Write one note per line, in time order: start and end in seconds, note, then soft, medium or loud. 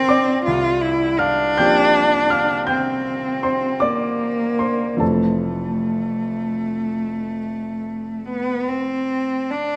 0.00 0.42 D3 medium
0.00 0.43 A#3 soft
0.00 0.43 C4 soft
0.00 0.45 C4 medium
0.00 0.43 A4 medium
0.00 0.48 A#4 medium
0.00 0.48 C5 medium
0.00 0.49 G5 medium
0.00 0.48 A#5 medium
0.00 0.48 C6 medium
0.00 0.48 G6 medium
0.09 1.16 D5 medium
0.09 1.19 D6 medium
0.45 1.55 C2 medium
0.45 0.83 F4 medium
0.81 1.21 E4 medium
1.19 2.68 D4 medium
1.19 1.54 F5 medium
1.19 1.57 F6 medium
1.57 4.98 F3 soft
1.57 4.98 A#3 soft
1.57 4.98 C4 soft
1.57 4.99 G4 soft
1.57 2.28 G5 medium
1.57 2.31 G6 medium
2.30 2.66 F5 medium
2.30 2.68 F6 medium
2.67 3.84 C4 soft
2.67 3.40 G5 medium
2.67 3.43 G6 medium
3.43 3.80 C5 soft
3.43 3.82 C6 medium
3.80 5.03 A#3 medium
3.80 4.56 D5 medium
3.80 4.59 D6 medium
4.59 4.98 C5 soft
4.59 5.00 C6 medium
4.97 9.76 F2 soft
4.97 9.76 E3 soft
4.97 9.76 A3 soft
4.97 9.76 C4 soft
4.97 8.68 A5 medium
5.01 9.76 F1 soft
5.01 8.28 A3 soft
5.01 8.64 A4 soft
8.28 8.70 B3 medium
8.68 9.52 C4 soft
9.50 9.76 D4 medium